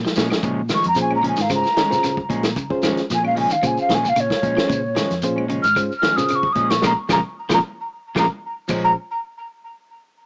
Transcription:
0.04 F3, snare, shekere
0.15 A#2 F3 G#3 C#4, snare, shekere
0.30 F3 G#3 C#4, snare, claves, shekere
0.43 A#2 C#3 F3 G#3 C#4, kick, closed hi-hat, shekere
0.69 D#3 F3 G#3, muted clean electric guitar stroke, snare, closed hi-hat, claves, shekere
0.74 C#6
0.82 F2, closed hi-hat, shekere
0.88 A#5
0.95 A#2 F3 C#4 F4 G#4 C5, closed hi-hat, shekere
1.01 G#5
1.10 G#3 C#4, claves
1.15 A#5
1.23 C#3 F3 G#3 C#4, closed hi-hat
1.28 G#5
1.36 G#2 D#3, snare, closed hi-hat, shekere
1.41 F5
1.49 C#3 C#4 F4 G#4 C5, kick, snare, closed hi-hat, claves, shekere
1.55 A#5
1.64 snare, shekere
1.77 D#3 G#3 C#4, snare, closed hi-hat, shekere
1.90 C#3 C#4 F4 G#4 C5, snare, shekere
2.03 C#3, snare, closed hi-hat, claves, shekere
2.17 kick
2.29 A#2 F3 G#3 C#4, kick, closed hi-hat, shekere
2.43 F3, snare, closed hi-hat, claves, shekere
2.56 C#3, kick, closed hi-hat, shekere
2.70 C#4 F4 G#4 C5, kick
2.83 D#3 F3 G#3 C#4, snare, closed hi-hat, claves, shekere
2.97 snare, closed hi-hat, shekere
3.10 A#2 F3 G#5, snare, closed hi-hat, shekere
3.23 G#3 C#4 F5, claves
3.35 C#3 F3 G#3 C#4 G#5, open hi-hat
3.50 D#3 F5, closed hi-hat, shekere
3.62 A#2 C#3 C#4 F4 G#4 C5, kick, closed hi-hat, claves, shekere
3.67 G#5
3.78 F5, shekere
3.89 A#2 D#3 F3 G#3 C#4, snare, closed hi-hat, shekere
3.94 G#5
4.05 C#3 F5, shekere
4.16 A#2 C#3, closed hi-hat, claves, shekere
4.20 C#5
4.30 kick, snare
4.42 A#2 F3 G#3 C#4, kick, closed hi-hat, shekere
4.57 F3 G#3 C#4 F4 G#4 C5, snare, claves, shekere
4.69 A#2 C#3, kick, closed hi-hat, shekere
4.95 D#3 F3 G#3 C#4, snare, closed hi-hat, claves, shekere
5.11 F2, snare, closed hi-hat, shekere
5.22 A#2 F3 C#4 F4 G#4 C5, closed hi-hat, shekere
5.36 G#3 C#4, claves
5.48 C#3 F3 G#3 C#4, closed hi-hat
5.62 G#2 D#3 F6, closed hi-hat, shekere
5.76 C#4 F4 G#4 C5, muted clean electric guitar stroke, kick, closed hi-hat, claves, shekere
5.92 shekere
5.98 F6
6.02 D#3 F3 G#3 C#4, snare, closed hi-hat, shekere
6.16 C#3 C#4 F4 G#4 C5 D#6, snare, shekere
6.28 C#3, closed hi-hat, claves, shekere
6.35 C#6
6.43 kick
6.52 A#2 F3 G#3 D#6, kick, closed hi-hat
6.57 C#4, shekere
6.70 F3 C#6, snare, closed hi-hat, claves, shekere
6.82 A#1 A#2 C#3 F3 G#3 A#3 F4 G#4 A#4, kick, snare, claves, shekere
6.86 A#5
7.09 A#1 A#2 C#3 F3 G#3 A#3 F4 G#4 A#4 A#5, kick, snare, claves, shekere
7.49 A#1 A#2 C#3 F3 G#3 A#3 F4 G#4 A#4, kick, snare, claves, shekere
7.54 A#5
8.15 A#1 A#2 C#3 F3 G#3 A#3 F4 G#4 A#4 A#5, kick, snare, claves, shekere
8.68 A#1 A#2 F3 G#3 C#4 F4 G#4 C5, kick, crash, claves, shekere
8.84 A#5

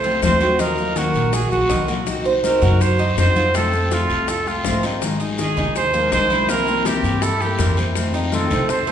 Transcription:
Already playing: C2 C5
0.03 A3 C4 F4, high conga, maracas
0.22 D#2 C3 F3 A3 C4 F4 C5, high bongo, low bongo, high conga, short guiro, maracas
0.41 A3 C4 F4 F#4, high bongo, high conga, short guiro, maracas
0.59 D#3 F#3 A#3 D#4 F4 A#4, high bongo, high conga, long guiro, maracas
0.77 F#3 A#3 F4, high bongo, high conga, maracas
0.95 D#3 F#3 A#3 F#4 A#4, high bongo, high conga, short guiro, maracas
1.14 A#1, high conga, short guiro, maracas
1.32 F#4 G#4, muted steel-string acoustic guitar stroke, high bongo, high conga, long guiro, maracas
1.51 A#1 F#3 A#3 F4 F#4, high bongo, high conga, maracas
1.69 C2 D#3 F#3 A#3 F4 D#5, high bongo, low bongo, high conga, short guiro, maracas
1.88 F#3 A#3 F4 F#4, high bongo, short guiro, maracas
2.06 C4 D#4 F#4, high bongo, high conga, long guiro, maracas
2.25 D#4 F#4 C5, high bongo, high conga, maracas
2.43 C4 D#4 F#4 A#4, high bongo, high conga, short guiro, maracas
2.62 F#2 F#4, high bongo, high conga, low conga, short guiro, maracas
2.81 C5, muted steel-string acoustic guitar stroke, high bongo, high conga, long guiro, maracas
2.99 D#4 F#4, high conga, maracas
3.17 F2 C4 D#4 F#4 C5, high bongo, low bongo, high conga, short guiro, maracas
3.36 D#4 F4 F#4, high bongo, high conga, short guiro, maracas
3.54 C3 F3 A3 C4 F4 A4, high bongo, high conga, long guiro, maracas
3.73 A3 C4 F4, high bongo, high conga, maracas
3.91 C3 F3 A3 C4 F4 A4, high bongo, high conga, short guiro, maracas
4.09 C2, high conga, short guiro, maracas
4.28 F4 A4, muted steel-string acoustic guitar stroke, high bongo, high conga, long guiro, maracas
4.46 A3 C4 F4, high bongo, high conga, maracas
4.65 G#1 C3 F3 A3 C4 F4 C5, high bongo, low bongo, high conga, short guiro, maracas
4.83 A3 C4 D#4 F4, high bongo, short guiro, maracas
5.02 D#3 G#3 D#4 G#4, high bongo, high conga, long guiro, maracas
5.20 G#3 D#4 G#4, high bongo, high conga, maracas
5.38 D#3 G#3 D#4 G#4, high bongo, high conga, short guiro, maracas
5.57 D#2 D#4, high bongo, high conga, low conga, short guiro, maracas
5.75 C5, muted steel-string acoustic guitar stroke, high bongo, high conga, long guiro, maracas
5.94 G#3 A#3 D#4 G#4, high conga, maracas
6.12 C2 D#3 G#3 D#4 G#4 C5, high bongo, low bongo, high conga, short guiro, maracas
6.30 G#3 D#4 E4 G#4, high bongo, high conga, short guiro, maracas
6.49 C3 E3 A#3 C4 E4 A#4, high bongo, high conga, maracas
6.67 A#3 C4 E4, high bongo, high conga, maracas
6.85 C3 E3 A#3 C4 E4 G4, high bongo, high conga, short guiro, maracas
7.03 G2, high conga, short guiro, maracas
7.22 E4 A4, muted steel-string acoustic guitar stroke, high bongo, high conga, long guiro, maracas
7.40 A#3 C4 E4 G4, high bongo, high conga, maracas
7.59 F2 C3 E3 A#3 C4 E4 A#4, high bongo, low bongo, high conga, short guiro, maracas
7.77 A#3 C4 E4, high bongo, short guiro, maracas
7.95 C3 D#3 A3 C4 F4, high bongo, high conga, long guiro, maracas
8.13 A3 C4 D#4 F4, high bongo, high conga, maracas
8.32 C3 D#3 A3 C4 F4 A4, high bongo, high conga, short guiro, maracas
8.50 C2 C4, high bongo, high conga, low conga, short guiro, maracas
8.69 C5, muted steel-string acoustic guitar stroke, high bongo, high conga, long guiro, maracas
8.87 A3 C4 F4, high conga, maracas

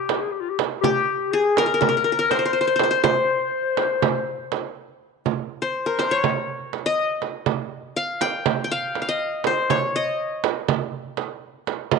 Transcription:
Already playing: G4
0.09 frame drum
0.21 G#4
0.32 G4
0.40 F4
0.50 G4
0.59 frame drum
0.81 G4, frame drum
1.31 G#4
1.56 A#4, frame drum
1.66 A#4
1.74 A#4
1.81 A#4, frame drum
1.89 A#4
1.97 A#4
2.04 A#4
2.12 A#4
2.19 A#4
2.30 C5, frame drum
2.39 C5
2.46 C5
2.53 C5
2.61 C5
2.67 C5
2.76 C5, frame drum
2.83 C5
2.91 C5
3.04 C5, frame drum
3.77 frame drum
4.02 frame drum
4.52 frame drum
5.26 frame drum
5.62 C5
5.86 A#4
5.99 C5, frame drum
6.11 C#5
6.24 frame drum
6.73 frame drum
6.86 D#5
7.22 frame drum
7.46 frame drum
7.96 F5
8.21 G5, frame drum
8.46 frame drum
8.64 G5
8.71 F5
8.95 frame drum
9.02 F5
9.09 D#5
9.44 C5, frame drum
9.70 C#5, frame drum
9.96 D#5
10.44 frame drum
10.68 frame drum
11.17 frame drum
11.67 frame drum
11.91 frame drum

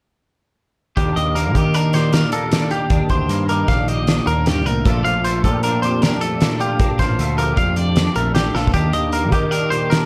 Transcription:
0.97 D#2 D4 G4, kick, closed hi-hat
1.16 D#2 G4 D#5, closed hi-hat
1.35 A#3 A#4, closed hi-hat
1.55 D#3 G4, kick, closed hi-hat
1.74 D4 A#4, closed hi-hat
1.93 A#2 G4 C5, snare, closed hi-hat
2.13 D4 A#4, snare, closed hi-hat
2.32 A#3 A4, closed hi-hat
2.52 D#2 D4, snare, closed hi-hat
2.71 G4, closed hi-hat
2.89 D#2 D4, kick, closed hi-hat
3.09 D2 G4 C5, kick, closed hi-hat
3.29 G2 A#3, closed hi-hat
3.49 D#3 G4 A#4, closed hi-hat
3.68 A#1 D4 F5, kick, snare, closed hi-hat
3.88 A#2 G4 D#5, closed hi-hat
4.07 D4, snare, closed hi-hat
4.27 D#2 A#3 A#4, closed hi-hat
4.46 G2 G4, snare, closed hi-hat
4.66 C2 A2 A#4, closed hi-hat
4.85 A#1 A#2 F3 A3 D4 F4 A4, kick, closed hi-hat
5.05 A#1 F4 F5, closed hi-hat
5.24 A3 C5, closed hi-hat
5.44 A#2 F3 G4 A4, kick, closed hi-hat
5.63 D4 A#4, closed hi-hat
5.82 F2 G4 C5, closed hi-hat
6.02 D4 A#4, snare, closed hi-hat
6.21 A3 A4, closed hi-hat
6.41 A#2 D4, snare, closed hi-hat
6.60 F4 G4, closed hi-hat
6.79 A#1 A#2 D4, kick, closed hi-hat
6.99 A1 F4 C5, kick, snare, closed hi-hat
7.19 D2 A3, closed hi-hat
7.38 F3 G4 A#4, closed hi-hat
7.57 F2 D4 F5, kick, closed hi-hat
7.76 F2 G4 D5, closed hi-hat
7.96 D4, snare, closed hi-hat
8.16 A#1 A3 A#4, closed hi-hat
8.35 A#2 D4 G4, snare, closed hi-hat
8.54 A#1 F4 A4, snare
8.67 kick
8.74 D#2 D4 G4, kick, closed hi-hat
8.93 D#2 G4 D#5, closed hi-hat
9.12 A#3 A#4, closed hi-hat
9.32 D#3 G4, kick, closed hi-hat
9.51 D4 A#4, closed hi-hat
9.70 A#2 G4 C5, closed hi-hat
9.90 D4 A#4, snare, closed hi-hat

